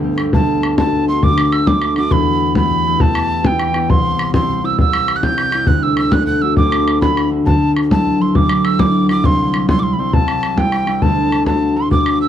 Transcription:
Already playing: D2 D4
0.02 A3 B3 G4, bodhran
0.18 A3 B3 G4, bodhran
0.33 D2 A5, bodhran
0.63 bodhran
0.77 A3 D4 F#4 A5, bodhran
0.92 bodhran
1.08 A3 D4 F#4 C6
1.23 D2 D6, bodhran
1.38 bodhran
1.52 E6, bodhran
1.66 A3 D4 F#4 D6, bodhran
1.82 bodhran
1.96 A3 D4 F#4 D6, bodhran
2.11 E2 B5, bodhran
2.55 B3 E4 G4 B5, bodhran
2.70 bodhran
2.86 B3 E4 G4
3.00 E2 A5, bodhran
3.15 bodhran
3.44 B3 E4 G4 G5, bodhran
3.59 bodhran
3.74 B3 E4 G4, bodhran
3.90 C2 C6, bodhran
4.19 bodhran
4.34 C4 E4 G4 C6, bodhran
4.49 bodhran
4.63 C4 E4 G4 E6
4.78 C2 E6, bodhran
4.93 bodhran
5.08 bodhran
5.16 F#6
5.23 C4 E4 G4 G6, bodhran
5.38 bodhran
5.52 C4 E4 G4, bodhran
5.67 D2 F#6, bodhran
5.83 E6
5.97 E6, bodhran
6.12 A3 D4 F#4 F#6, bodhran
6.27 F#6, bodhran
6.42 A3 D4 F#4 E6
6.57 D2 D6, bodhran
6.72 bodhran
6.88 bodhran
7.01 A3 D4 F#4 B5, bodhran
7.17 bodhran
7.30 A3 D4 F#4
7.45 D2 A5, bodhran
7.77 bodhran
7.90 F#3 D4 E4 A5, bodhran
8.06 bodhran
8.20 F#3 D4 E4 C6
8.35 D2 D6, bodhran
8.49 bodhran
8.65 E6, bodhran
8.79 F#3 D4 E4 D6, bodhran
9.09 F#3 D4 E4 D6, bodhran
9.24 C2 C6, bodhran
9.54 bodhran
9.69 G3 C4 E4 C6, bodhran
9.79 C6 D6, bodhran
9.93 B5
9.99 G3 C4 E4 C6
10.13 C2 A5, bodhran
10.28 bodhran
10.43 bodhran
10.57 G3 C4 E4 G5, bodhran
10.72 bodhran
10.87 G3 C4 E4, bodhran
11.02 D2 A5, bodhran
11.32 bodhran
11.46 A3 D4 F#4 A5, bodhran
11.75 A3 D4 F#4 C6
11.91 D2 D6, bodhran
12.06 bodhran
12.21 E6

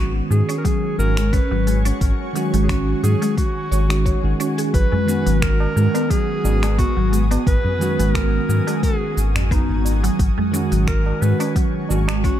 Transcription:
Already playing: G#1 D#3 G#3 C#4 F#4 C#5 G#5 C#6
0.30 G#2 G#3 G#4, shaker
0.49 C#4, open hi-hat, shaker
0.58 A#4
0.65 F#3 G#4, kick, open hi-hat, shaker
0.98 G#1 D#3 G#3 C#4 F#4 A#4, shaker
1.17 G#3, finger snap, open hi-hat, shaker
1.33 C#4 B4, kick, open hi-hat, shaker
1.51 G#1 F#3
1.67 G#3, open hi-hat, shaker
1.85 C#4, open hi-hat, shaker
2.01 G#1, kick, open hi-hat, shaker
2.33 D#3 F#3 G#3 C#4, open hi-hat, shaker
2.37 F#4
2.54 G#1 G#3, open hi-hat, shaker
2.63 G#4
2.69 C#4 F#4, finger snap, kick, open hi-hat, shaker
3.03 G#2 F#3 G#4, open hi-hat, shaker
3.22 G#3, open hi-hat, shaker
3.37 F#4, kick, open hi-hat, shaker
3.71 G#1 C#5, open hi-hat, shaker
3.89 D#3 G#3 C#4 F#4, finger snap, open hi-hat, shaker
4.06 C#5, kick, open hi-hat, shaker
4.23 G#1 D#3 G#3 C#4 F#4
4.40 C#4, open hi-hat, shaker
4.58 G#4, open hi-hat, shaker
4.74 G#1 F#3 B3 B4 D#6, kick, open hi-hat, shaker
4.92 G#3, tabla ge
5.06 D#3 G#3 B3 C#4 F#4, open hi-hat, shaker
5.26 G#1 F#3, open hi-hat, shaker
5.42 A#4, finger snap, kick, open hi-hat, shaker
5.60 tabla na
5.76 G#2 G#3, shaker
5.94 B3, open hi-hat, tabla na, tabla tin, shaker
6.10 F#3 G#4, kick, open hi-hat, shaker
6.43 G#1 D#3 G#3 C#4 F#4, tabla tin, shaker
6.63 G#3, finger snap, open hi-hat, tabla na, shaker
6.78 B3 F#4, kick, open hi-hat, shaker
6.97 G#1 F#3
7.12 G#3, open hi-hat, shaker
7.31 B3, open hi-hat, tabla na, tabla tin, shaker
7.47 G#1 B4, kick, open hi-hat, shaker
7.65 tabla ge
7.78 D#3 F#3 G#3 C#4, open hi-hat, shaker
7.83 F#4
7.99 G#1 G#3, open hi-hat, shaker
8.15 B3 A#4, finger snap, kick, open hi-hat, shaker
8.49 G#2 F#3, shaker
8.67 G#3, open hi-hat, tabla na, tabla tin, shaker
8.83 G#4, kick, open hi-hat, shaker
9.17 G#1, open hi-hat, shaker
9.36 finger snap, open hi-hat, tabla tin, tabla ge, shaker
9.51 B3 D#4, kick, open hi-hat, shaker
9.69 G#1
9.85 open hi-hat, tabla tin, shaker
10.03 F#3, open hi-hat, shaker
10.19 G#1 F#3 C#5 C#6, kick, open hi-hat, shaker
10.38 G#3, tabla ge
10.52 D#3 G#3 C#4, open hi-hat, shaker
10.56 F#4
10.72 G#1 F#3, open hi-hat, shaker
10.87 A#4, finger snap, kick, open hi-hat, shaker
11.06 tabla na
11.22 G#2 G#3 B4, shaker
11.40 C#4, open hi-hat, tabla na, tabla tin, shaker
11.56 F#3, kick, open hi-hat, shaker
11.89 G#1 D#3 G#3 C#4 F#4, tabla tin, shaker
12.08 G#3, finger snap, open hi-hat, tabla na, shaker
12.24 C#4 F#4, kick, open hi-hat, shaker

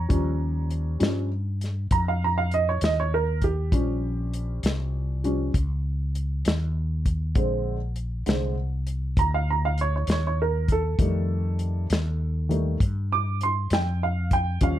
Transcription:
Already playing: C#5 A#5
0.09 D#2 F3 G3 C#4, kick, closed hi-hat
0.70 closed hi-hat
1.00 G2 F3 G3 C#4, snare, closed hi-hat
1.61 snare, closed hi-hat
1.91 F2 A#5, kick, closed hi-hat
2.08 F5
2.24 A#5
2.38 F5
2.51 D#5, closed hi-hat
2.69 C#5
2.81 D#2 D#5, snare, closed hi-hat
3.00 C#5
3.14 A#4
3.42 G4, kick, closed hi-hat
3.72 A#1 F3 G3 C#4, kick, closed hi-hat
4.34 closed hi-hat
4.63 C2, snare, closed hi-hat
5.24 F3 G3 C#4, closed hi-hat
5.54 C#2, kick, closed hi-hat
6.15 closed hi-hat
6.45 D#2, snare, closed hi-hat
7.06 kick, closed hi-hat
7.35 A#1 D3 G#3 C4, kick, closed hi-hat
7.96 closed hi-hat
8.26 C2 D3 G#3 C4, snare, closed hi-hat
8.87 closed hi-hat
9.17 D2 A#5, kick, closed hi-hat
9.34 F5
9.50 A#5
9.65 F5
9.78 C#5, closed hi-hat
9.96 C#5
10.07 D#2, snare, closed hi-hat
10.12 C#5
10.27 C#5
10.42 A#4
10.68 A4, kick, closed hi-hat
10.99 F2 D#3 G3 A3, kick, closed hi-hat
11.59 closed hi-hat
11.90 D#2, snare, closed hi-hat
12.49 D#3 G3 A3, closed hi-hat
12.80 G2, kick, closed hi-hat
13.12 D6
13.41 C6, closed hi-hat
13.70 F2 G5, snare, closed hi-hat
14.03 F5
14.31 G5, kick, closed hi-hat
14.61 D#2 F3 G3 C#4 F5, kick, closed hi-hat

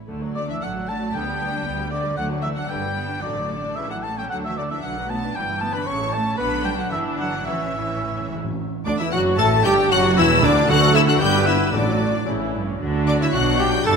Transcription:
0.08 D2 D3 A3 D5
0.22 F#3
0.35 D3 A3 D5
0.48 E3 D4 E5
0.62 A1 F#3 A3 F#5
0.76 F#3
0.88 D3 A3 A5
1.00 F#3
1.14 D2 D3 G3 B3 G5
1.26 G3
1.40 B3
1.52 D4
1.65 D2 B3
1.78 G3
1.91 D3 D5
2.03 G3
2.16 D2 D3 F#3 A3 D5 F#5
2.29 F#3
2.42 E3 A3 E5
2.55 F#3 D4 F#5
2.68 G1 D3 G3 B4 G5
2.82 G3
2.94 B3
3.09 D4
3.21 A1 D3 F#3 A4 D5
3.36 F#3
3.49 A3
3.63 D4
3.76 A1 C#3 E3 E5
3.90 E3 F#3 F#5
4.03 A3 A5
4.18 G3 C#4 G5
4.30 D2 D3 F#3 F#5
4.44 E3 F#3 E5
4.57 D3 A3 D5
4.70 E3 D4 E5
4.83 B1 D3 F#3 B4 F#5
4.98 F#3
5.09 A3 B3 A5
5.23 D4
5.34 G1 E3 G3 G5
5.50 G3
5.60 A3 B3 A5
5.72 B3 D4 B4 B5
5.85 A1 C#4 A4 C#5 C#6
5.89 C#3
6.01 E3
6.10 A3 A5
6.26 C#4
6.37 B1 D3 B3 D4 F#4 B4 B5
6.64 G3 G5
6.77 F#3 F#5
6.89 G1 E3 D4 E4 E5
7.18 F#3 F#5
7.46 A1 A2 E3 C#4 E4 E5
7.54 A2
7.64 A2
7.80 A2
7.87 A2
7.95 A2
8.03 A2
8.12 A2
8.19 A2
8.28 A2
8.35 A2
8.44 A2
8.51 A2
8.85 D2 D3 D4 D5 D6
8.98 E2 E3 E4 E5 E6
9.11 F#1 F#2 F#3 F#4 F#5 F#6
9.37 A1 A2 A3 A4 A5 A6
9.64 G1 G2 G3 G4 G5 G6
9.90 F#1 F#2 F#3 F#4 F#5 F#6
10.17 E1 E2 E3 E4 E5 E6
10.43 D2 D3 D4 D5 D6
10.69 D2 D3 A3 D4 F#4 A4 F#5 F#6
10.83 F#3
10.95 A3 E4 E5 E6
11.07 D4 F#4 F#5 F#6
11.19 G1 G2 D3 B3 D4 G4 B4 G5 G6
11.34 G3
11.46 B3 E4 E5 E6
11.59 D4
11.71 A1 A2 D3 F#3 D4 F#4 D5 D6
11.75 D5
11.86 F#3
11.99 A3
12.13 D4
12.26 A1 A2 C#3 E3 C#4 E4
12.40 E3
12.53 G2 A3
12.67 C#4
12.80 D2 D3 F#3 D4 F#4
13.06 D4 D5 D6
13.21 E4 E5 E6
13.32 B1 B2 D4 F#4 F#5 F#6
13.59 G4 G5 G6
13.85 G1 G2 E3 D4 E4 A4 A5 A6

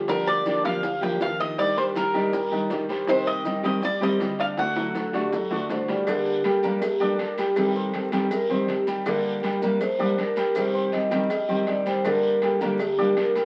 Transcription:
Already playing: G1
0.08 D3 F3 A#3 D4 G4 A#4 D5, high bongo, long guiro, maracas
0.27 D5, maracas
0.45 D3 F3 A#3 D4 G4 D5, high bongo, short guiro, maracas
0.64 D2 F3 A#3 D4 F4 G4 F5, high bongo, short guiro, maracas
0.83 muted steel-string acoustic guitar stroke, high bongo, long guiro, maracas
1.01 F3 A#3 D4 F4 G4 G5, high bongo, maracas
1.20 D#2 F3 A#3 D4 G4 F5, high bongo, low bongo, short guiro, maracas
1.39 D#3 D#5, high bongo, short guiro, maracas
1.57 D#3 G3 D4 G4 D5, high bongo, long guiro, maracas
1.77 G3 G4 A#4 C5, maracas
1.95 D#3 G3 D4 G4 A#4, high bongo, short guiro, maracas
2.14 A#1 D#3 G3 D4 D#4 G4 D#5, high bongo, short guiro, maracas
2.33 G3 G4 A#4, muted steel-string acoustic guitar stroke, high bongo, long guiro, maracas
2.51 D#3 G3 D4 G4 D#5, high bongo, maracas
2.70 C2 D#3 G3 D4 G4, high bongo, low bongo, short guiro, maracas
2.89 G3 G4 C5, high bongo, short guiro, maracas
3.07 C3 D#3 G3 C4 D#4 G4 C5 D#5, high bongo, long guiro, maracas
3.27 D#5, maracas
3.45 D#3 G3 C4 D#4 G4 D#5, high bongo, short guiro, maracas
3.63 G2 D#3 G3 C4 G4 C5 D#5, high bongo, short guiro, maracas
3.82 D5, muted steel-string acoustic guitar stroke, high bongo, long guiro, maracas
4.01 D#3 G3 C4 G4 C5 D#5, high bongo, maracas
4.20 D2 G3 C4 G4, high bongo, low bongo, short guiro, maracas
4.39 D4 D5 F5, high bongo, short guiro, maracas
4.57 D3 A3 D4 F#4 F#5, high bongo, long guiro, maracas
4.76 F#3 F#4 A4, high bongo, maracas
4.95 D3 A3 D4 F#4 A4, high bongo, short guiro, maracas
5.13 F#2 D3 A3 D4 F#4 G4 D5, short guiro, maracas
5.32 F#3 F#4 A4, muted steel-string acoustic guitar stroke, low bongo, long guiro, maracas
5.50 D3 A3 D4 F#4 D5, low bongo, maracas
5.69 G2 D3 A3 D4 F#4 C5, low bongo, short guiro, maracas
5.88 G3 G4 A#4 D5, low bongo, short guiro, maracas
6.06 D3 G3 A#3 D4 G4 D5, cowbell, long guiro, maracas
6.26 maracas
6.44 G3 A#3 D4 G4 A4 G5, cowbell, short guiro, maracas
6.63 G2 G3 A#3 D4 G4 A#4 A#5, short guiro, maracas
6.81 G4, muted steel-string acoustic guitar stroke, cowbell, long guiro, maracas
7.00 G3 A#3 D4 G4 A4 D5 D6, maracas
7.19 C2 G3 A#3 D4 G4 A#4, cowbell, short guiro, maracas
7.38 G3 G4 G5, cowbell, short guiro, maracas
7.56 C3 D#3 G3 C4 G4 A4, cowbell, long guiro, maracas
7.75 C4 C5 C6, maracas
7.93 D#3 G3 C4 G4, cowbell, short guiro, maracas
8.12 C2 D#3 G3 C4 G4 G5, cowbell, short guiro, maracas
8.31 A#4, muted steel-string acoustic guitar stroke, cowbell, long guiro, maracas
8.49 A1 D#3 G3 C4 G4 C5 C6, maracas
8.68 G1 D#3 G3 C4 G4, cowbell, short guiro, maracas
8.87 G3 G4 G5, short guiro, maracas
9.06 D3 G3 A#3 D4 G4 A#4 D5, cowbell, long guiro, maracas
9.25 maracas
9.43 G3 A#3 D4 G4 G5, cowbell, short guiro, maracas
9.62 G2 G3 A#3 D4 G4 A#4 A#5, short guiro, maracas
9.81 C5, muted steel-string acoustic guitar stroke, cowbell, long guiro, maracas
9.99 G3 A#3 D4 G4 D5 D6, maracas
10.18 C2 G3 A#3 D4 G4 A#4, cowbell, short guiro, maracas
10.36 G3 G4 G5, cowbell, short guiro, maracas
10.55 C3 D#3 G3 C4 G4 C5, cowbell, long guiro, maracas
10.74 C4 C5 C6, maracas
10.92 D#3 G3 C4 G4 D#5, cowbell, short guiro, maracas
11.11 G2 D#3 G3 C4 G4 G5, cowbell, short guiro, maracas
11.30 muted steel-string acoustic guitar stroke, cowbell, long guiro, maracas
11.48 F2 D#3 G3 C4 G4 C5 C6, maracas
11.67 G2 D#3 G3 C4 G4 D5, cowbell, short guiro, maracas
11.86 G3 G4 C5 G5, short guiro, maracas
12.04 D3 G3 A#3 D4 G4 A#4 D5, cowbell, long guiro, maracas
12.23 maracas
12.42 G3 A#3 D4 G4 A4 G5, cowbell, short guiro, maracas
12.61 D2 G3 A#3 D4 G4 A#4 A#5, short guiro, maracas
12.79 G4, muted steel-string acoustic guitar stroke, cowbell, long guiro, maracas
12.98 G3 A#3 D4 G4 D5 D6, maracas
13.17 C2 G3 A#3 D4 G4 A#4, cowbell, short guiro, maracas
13.35 G3 G4 G5, cowbell, short guiro, maracas

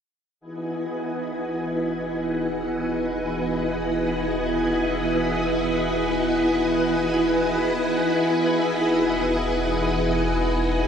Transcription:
0.40 E1 E4 G#4 B4 D#5 F#5 G#5
8.47 E1

